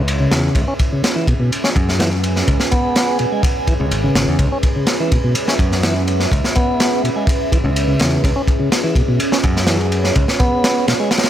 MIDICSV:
0, 0, Header, 1, 5, 480
1, 0, Start_track
1, 0, Key_signature, 4, "minor"
1, 0, Tempo, 480000
1, 558, Time_signature, 4, 2, 24, 8
1, 11297, End_track
2, 0, Start_track
2, 0, Title_t, "Ambient pad"
2, 0, Program_c, 0, 92
2, 0, Note_on_c, 0, 61, 76
2, 0, Note_on_c, 0, 68, 69
2, 0, Note_on_c, 0, 71, 74
2, 0, Note_on_c, 0, 76, 83
2, 543, Note_off_c, 0, 76, 0
2, 567, Note_on_c, 0, 80, 89
2, 4388, Note_off_c, 0, 80, 0
2, 4395, Note_on_c, 0, 76, 89
2, 8223, Note_off_c, 0, 76, 0
2, 8241, Note_on_c, 0, 73, 88
2, 11297, Note_off_c, 0, 61, 0
2, 11297, Note_off_c, 0, 68, 0
2, 11297, Note_off_c, 0, 71, 0
2, 11297, Note_off_c, 0, 73, 0
2, 11297, End_track
3, 0, Start_track
3, 0, Title_t, "Tonewheel organ"
3, 0, Program_c, 1, 16
3, 198, Note_on_c, 1, 49, 100
3, 545, Note_off_c, 1, 49, 0
3, 559, Note_on_c, 1, 49, 82
3, 622, Note_off_c, 1, 49, 0
3, 676, Note_on_c, 1, 61, 72
3, 739, Note_off_c, 1, 61, 0
3, 924, Note_on_c, 1, 49, 78
3, 1023, Note_off_c, 1, 49, 0
3, 1158, Note_on_c, 1, 52, 101
3, 1270, Note_off_c, 1, 52, 0
3, 1277, Note_on_c, 1, 47, 75
3, 1341, Note_off_c, 1, 47, 0
3, 1397, Note_on_c, 1, 47, 96
3, 1510, Note_off_c, 1, 47, 0
3, 1638, Note_on_c, 1, 61, 78
3, 1700, Note_off_c, 1, 61, 0
3, 1992, Note_on_c, 1, 52, 102
3, 2101, Note_off_c, 1, 52, 0
3, 2714, Note_on_c, 1, 59, 99
3, 3184, Note_off_c, 1, 59, 0
3, 3196, Note_on_c, 1, 47, 71
3, 3260, Note_off_c, 1, 47, 0
3, 3322, Note_on_c, 1, 56, 71
3, 3422, Note_off_c, 1, 56, 0
3, 3675, Note_on_c, 1, 52, 69
3, 3740, Note_off_c, 1, 52, 0
3, 3798, Note_on_c, 1, 49, 94
3, 3860, Note_off_c, 1, 49, 0
3, 4038, Note_on_c, 1, 49, 95
3, 4384, Note_off_c, 1, 49, 0
3, 4396, Note_on_c, 1, 49, 77
3, 4460, Note_off_c, 1, 49, 0
3, 4522, Note_on_c, 1, 61, 78
3, 4581, Note_off_c, 1, 61, 0
3, 4757, Note_on_c, 1, 49, 73
3, 4859, Note_off_c, 1, 49, 0
3, 5002, Note_on_c, 1, 52, 99
3, 5113, Note_off_c, 1, 52, 0
3, 5118, Note_on_c, 1, 47, 70
3, 5181, Note_off_c, 1, 47, 0
3, 5240, Note_on_c, 1, 47, 100
3, 5352, Note_off_c, 1, 47, 0
3, 5482, Note_on_c, 1, 61, 79
3, 5542, Note_off_c, 1, 61, 0
3, 5836, Note_on_c, 1, 52, 98
3, 5942, Note_off_c, 1, 52, 0
3, 6554, Note_on_c, 1, 59, 102
3, 7024, Note_off_c, 1, 59, 0
3, 7034, Note_on_c, 1, 47, 73
3, 7100, Note_off_c, 1, 47, 0
3, 7160, Note_on_c, 1, 56, 71
3, 7261, Note_off_c, 1, 56, 0
3, 7516, Note_on_c, 1, 52, 75
3, 7580, Note_off_c, 1, 52, 0
3, 7635, Note_on_c, 1, 49, 98
3, 7698, Note_off_c, 1, 49, 0
3, 7872, Note_on_c, 1, 49, 99
3, 8222, Note_off_c, 1, 49, 0
3, 8237, Note_on_c, 1, 49, 85
3, 8301, Note_off_c, 1, 49, 0
3, 8359, Note_on_c, 1, 61, 75
3, 8420, Note_off_c, 1, 61, 0
3, 8596, Note_on_c, 1, 49, 77
3, 8699, Note_off_c, 1, 49, 0
3, 8838, Note_on_c, 1, 52, 103
3, 8950, Note_off_c, 1, 52, 0
3, 8959, Note_on_c, 1, 47, 74
3, 9022, Note_off_c, 1, 47, 0
3, 9081, Note_on_c, 1, 47, 97
3, 9192, Note_off_c, 1, 47, 0
3, 9322, Note_on_c, 1, 61, 81
3, 9382, Note_off_c, 1, 61, 0
3, 9674, Note_on_c, 1, 52, 98
3, 9782, Note_off_c, 1, 52, 0
3, 10394, Note_on_c, 1, 59, 106
3, 10865, Note_off_c, 1, 59, 0
3, 10876, Note_on_c, 1, 47, 71
3, 10940, Note_off_c, 1, 47, 0
3, 10998, Note_on_c, 1, 56, 79
3, 11100, Note_off_c, 1, 56, 0
3, 11297, End_track
4, 0, Start_track
4, 0, Title_t, "Picked electric bass"
4, 0, Program_c, 2, 34
4, 0, Note_on_c, 2, 37, 93
4, 257, Note_off_c, 2, 37, 0
4, 318, Note_on_c, 2, 40, 90
4, 481, Note_off_c, 2, 40, 0
4, 552, Note_on_c, 2, 37, 102
4, 638, Note_off_c, 2, 37, 0
4, 1758, Note_on_c, 2, 42, 94
4, 2417, Note_off_c, 2, 42, 0
4, 2478, Note_on_c, 2, 37, 95
4, 2561, Note_off_c, 2, 37, 0
4, 3800, Note_on_c, 2, 37, 87
4, 3907, Note_off_c, 2, 37, 0
4, 3913, Note_on_c, 2, 32, 78
4, 4079, Note_off_c, 2, 32, 0
4, 4154, Note_on_c, 2, 32, 82
4, 4239, Note_off_c, 2, 32, 0
4, 4278, Note_on_c, 2, 40, 91
4, 4358, Note_off_c, 2, 40, 0
4, 4390, Note_on_c, 2, 37, 94
4, 4477, Note_off_c, 2, 37, 0
4, 5591, Note_on_c, 2, 42, 90
4, 6253, Note_off_c, 2, 42, 0
4, 6318, Note_on_c, 2, 37, 101
4, 6401, Note_off_c, 2, 37, 0
4, 7646, Note_on_c, 2, 37, 88
4, 7939, Note_off_c, 2, 37, 0
4, 8002, Note_on_c, 2, 40, 95
4, 8163, Note_off_c, 2, 40, 0
4, 8240, Note_on_c, 2, 37, 97
4, 8322, Note_off_c, 2, 37, 0
4, 9440, Note_on_c, 2, 42, 96
4, 10098, Note_off_c, 2, 42, 0
4, 10159, Note_on_c, 2, 37, 105
4, 10241, Note_off_c, 2, 37, 0
4, 11297, End_track
5, 0, Start_track
5, 0, Title_t, "Drums"
5, 78, Note_on_c, 9, 51, 86
5, 178, Note_off_c, 9, 51, 0
5, 315, Note_on_c, 9, 38, 104
5, 316, Note_on_c, 9, 51, 63
5, 415, Note_off_c, 9, 38, 0
5, 416, Note_off_c, 9, 51, 0
5, 549, Note_on_c, 9, 36, 93
5, 552, Note_on_c, 9, 51, 77
5, 649, Note_off_c, 9, 36, 0
5, 652, Note_off_c, 9, 51, 0
5, 793, Note_on_c, 9, 51, 69
5, 796, Note_on_c, 9, 36, 98
5, 893, Note_off_c, 9, 51, 0
5, 896, Note_off_c, 9, 36, 0
5, 1038, Note_on_c, 9, 51, 79
5, 1040, Note_on_c, 9, 38, 105
5, 1138, Note_off_c, 9, 51, 0
5, 1140, Note_off_c, 9, 38, 0
5, 1275, Note_on_c, 9, 36, 85
5, 1278, Note_on_c, 9, 51, 62
5, 1375, Note_off_c, 9, 36, 0
5, 1378, Note_off_c, 9, 51, 0
5, 1524, Note_on_c, 9, 51, 88
5, 1624, Note_off_c, 9, 51, 0
5, 1641, Note_on_c, 9, 38, 57
5, 1741, Note_off_c, 9, 38, 0
5, 1758, Note_on_c, 9, 36, 100
5, 1762, Note_on_c, 9, 51, 63
5, 1858, Note_off_c, 9, 36, 0
5, 1862, Note_off_c, 9, 51, 0
5, 1888, Note_on_c, 9, 38, 42
5, 1988, Note_off_c, 9, 38, 0
5, 1998, Note_on_c, 9, 51, 78
5, 2007, Note_on_c, 9, 38, 119
5, 2098, Note_off_c, 9, 51, 0
5, 2107, Note_off_c, 9, 38, 0
5, 2124, Note_on_c, 9, 51, 45
5, 2224, Note_off_c, 9, 51, 0
5, 2236, Note_on_c, 9, 51, 75
5, 2336, Note_off_c, 9, 51, 0
5, 2361, Note_on_c, 9, 38, 35
5, 2461, Note_off_c, 9, 38, 0
5, 2477, Note_on_c, 9, 51, 81
5, 2478, Note_on_c, 9, 36, 106
5, 2577, Note_off_c, 9, 51, 0
5, 2578, Note_off_c, 9, 36, 0
5, 2597, Note_on_c, 9, 38, 56
5, 2697, Note_off_c, 9, 38, 0
5, 2716, Note_on_c, 9, 51, 74
5, 2724, Note_on_c, 9, 36, 87
5, 2816, Note_off_c, 9, 51, 0
5, 2824, Note_off_c, 9, 36, 0
5, 2956, Note_on_c, 9, 51, 82
5, 2961, Note_on_c, 9, 38, 109
5, 3056, Note_off_c, 9, 51, 0
5, 3061, Note_off_c, 9, 38, 0
5, 3188, Note_on_c, 9, 51, 61
5, 3288, Note_off_c, 9, 51, 0
5, 3431, Note_on_c, 9, 36, 122
5, 3442, Note_on_c, 9, 51, 90
5, 3531, Note_off_c, 9, 36, 0
5, 3542, Note_off_c, 9, 51, 0
5, 3674, Note_on_c, 9, 51, 69
5, 3675, Note_on_c, 9, 36, 88
5, 3774, Note_off_c, 9, 51, 0
5, 3775, Note_off_c, 9, 36, 0
5, 3913, Note_on_c, 9, 51, 80
5, 4013, Note_off_c, 9, 51, 0
5, 4155, Note_on_c, 9, 38, 121
5, 4161, Note_on_c, 9, 51, 75
5, 4255, Note_off_c, 9, 38, 0
5, 4261, Note_off_c, 9, 51, 0
5, 4389, Note_on_c, 9, 36, 93
5, 4389, Note_on_c, 9, 51, 77
5, 4489, Note_off_c, 9, 36, 0
5, 4489, Note_off_c, 9, 51, 0
5, 4629, Note_on_c, 9, 51, 72
5, 4633, Note_on_c, 9, 36, 90
5, 4729, Note_off_c, 9, 51, 0
5, 4733, Note_off_c, 9, 36, 0
5, 4866, Note_on_c, 9, 51, 91
5, 4869, Note_on_c, 9, 38, 104
5, 4966, Note_off_c, 9, 51, 0
5, 4969, Note_off_c, 9, 38, 0
5, 5116, Note_on_c, 9, 51, 75
5, 5119, Note_on_c, 9, 36, 94
5, 5216, Note_off_c, 9, 51, 0
5, 5219, Note_off_c, 9, 36, 0
5, 5350, Note_on_c, 9, 51, 94
5, 5450, Note_off_c, 9, 51, 0
5, 5478, Note_on_c, 9, 38, 55
5, 5578, Note_off_c, 9, 38, 0
5, 5592, Note_on_c, 9, 36, 84
5, 5594, Note_on_c, 9, 51, 60
5, 5692, Note_off_c, 9, 36, 0
5, 5694, Note_off_c, 9, 51, 0
5, 5718, Note_on_c, 9, 38, 37
5, 5818, Note_off_c, 9, 38, 0
5, 5832, Note_on_c, 9, 51, 79
5, 5834, Note_on_c, 9, 38, 114
5, 5932, Note_off_c, 9, 51, 0
5, 5934, Note_off_c, 9, 38, 0
5, 5960, Note_on_c, 9, 51, 39
5, 6060, Note_off_c, 9, 51, 0
5, 6075, Note_on_c, 9, 51, 73
5, 6175, Note_off_c, 9, 51, 0
5, 6200, Note_on_c, 9, 38, 36
5, 6300, Note_off_c, 9, 38, 0
5, 6316, Note_on_c, 9, 36, 108
5, 6327, Note_on_c, 9, 51, 81
5, 6416, Note_off_c, 9, 36, 0
5, 6427, Note_off_c, 9, 51, 0
5, 6444, Note_on_c, 9, 38, 54
5, 6544, Note_off_c, 9, 38, 0
5, 6554, Note_on_c, 9, 51, 65
5, 6565, Note_on_c, 9, 36, 96
5, 6654, Note_off_c, 9, 51, 0
5, 6665, Note_off_c, 9, 36, 0
5, 6799, Note_on_c, 9, 51, 85
5, 6804, Note_on_c, 9, 38, 105
5, 6899, Note_off_c, 9, 51, 0
5, 6904, Note_off_c, 9, 38, 0
5, 7048, Note_on_c, 9, 51, 64
5, 7148, Note_off_c, 9, 51, 0
5, 7271, Note_on_c, 9, 36, 112
5, 7291, Note_on_c, 9, 51, 95
5, 7371, Note_off_c, 9, 36, 0
5, 7391, Note_off_c, 9, 51, 0
5, 7523, Note_on_c, 9, 36, 85
5, 7526, Note_on_c, 9, 51, 70
5, 7623, Note_off_c, 9, 36, 0
5, 7626, Note_off_c, 9, 51, 0
5, 7762, Note_on_c, 9, 51, 83
5, 7862, Note_off_c, 9, 51, 0
5, 7994, Note_on_c, 9, 51, 67
5, 8009, Note_on_c, 9, 38, 111
5, 8094, Note_off_c, 9, 51, 0
5, 8109, Note_off_c, 9, 38, 0
5, 8239, Note_on_c, 9, 36, 95
5, 8245, Note_on_c, 9, 51, 87
5, 8339, Note_off_c, 9, 36, 0
5, 8345, Note_off_c, 9, 51, 0
5, 8475, Note_on_c, 9, 36, 97
5, 8480, Note_on_c, 9, 51, 63
5, 8575, Note_off_c, 9, 36, 0
5, 8580, Note_off_c, 9, 51, 0
5, 8720, Note_on_c, 9, 38, 103
5, 8720, Note_on_c, 9, 51, 95
5, 8820, Note_off_c, 9, 38, 0
5, 8820, Note_off_c, 9, 51, 0
5, 8955, Note_on_c, 9, 36, 93
5, 8959, Note_on_c, 9, 51, 66
5, 9055, Note_off_c, 9, 36, 0
5, 9059, Note_off_c, 9, 51, 0
5, 9197, Note_on_c, 9, 51, 81
5, 9297, Note_off_c, 9, 51, 0
5, 9322, Note_on_c, 9, 38, 60
5, 9422, Note_off_c, 9, 38, 0
5, 9434, Note_on_c, 9, 51, 67
5, 9439, Note_on_c, 9, 36, 93
5, 9534, Note_off_c, 9, 51, 0
5, 9539, Note_off_c, 9, 36, 0
5, 9565, Note_on_c, 9, 38, 42
5, 9665, Note_off_c, 9, 38, 0
5, 9667, Note_on_c, 9, 38, 102
5, 9673, Note_on_c, 9, 51, 79
5, 9767, Note_off_c, 9, 38, 0
5, 9773, Note_off_c, 9, 51, 0
5, 9809, Note_on_c, 9, 51, 37
5, 9909, Note_off_c, 9, 51, 0
5, 9918, Note_on_c, 9, 51, 74
5, 10018, Note_off_c, 9, 51, 0
5, 10042, Note_on_c, 9, 38, 36
5, 10142, Note_off_c, 9, 38, 0
5, 10154, Note_on_c, 9, 51, 80
5, 10160, Note_on_c, 9, 36, 99
5, 10254, Note_off_c, 9, 51, 0
5, 10260, Note_off_c, 9, 36, 0
5, 10282, Note_on_c, 9, 38, 50
5, 10382, Note_off_c, 9, 38, 0
5, 10397, Note_on_c, 9, 51, 63
5, 10401, Note_on_c, 9, 36, 105
5, 10497, Note_off_c, 9, 51, 0
5, 10501, Note_off_c, 9, 36, 0
5, 10641, Note_on_c, 9, 38, 123
5, 10643, Note_on_c, 9, 51, 90
5, 10741, Note_off_c, 9, 38, 0
5, 10743, Note_off_c, 9, 51, 0
5, 10879, Note_on_c, 9, 51, 73
5, 10883, Note_on_c, 9, 38, 99
5, 10979, Note_off_c, 9, 51, 0
5, 10983, Note_off_c, 9, 38, 0
5, 11109, Note_on_c, 9, 38, 88
5, 11122, Note_on_c, 9, 51, 65
5, 11174, Note_off_c, 9, 51, 0
5, 11174, Note_on_c, 9, 51, 73
5, 11182, Note_off_c, 9, 38, 0
5, 11182, Note_on_c, 9, 38, 92
5, 11233, Note_off_c, 9, 51, 0
5, 11233, Note_on_c, 9, 51, 74
5, 11240, Note_off_c, 9, 38, 0
5, 11240, Note_on_c, 9, 38, 92
5, 11297, Note_off_c, 9, 38, 0
5, 11297, Note_off_c, 9, 51, 0
5, 11297, End_track
0, 0, End_of_file